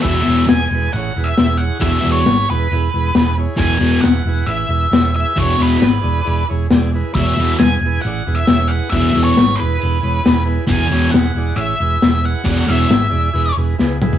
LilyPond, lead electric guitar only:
\new Staff \with { instrumentName = "Lead electric guitar" } { \time 4/4 \key e \mixolydian \tempo 4 = 135 e''4 gis''4 fis''8. e''8. fis''8 | e''8. cis''8. b'2 r8 | gis''4 fis''4 e''4. e''8 | cis''8 b'2 r4. |
e''4 gis''4 fis''8. e''8. fis''8 | e''8. cis''8. b'2 r8 | gis''4 fis''4 e''4. fis''8 | fis''8 e''2 r4. | }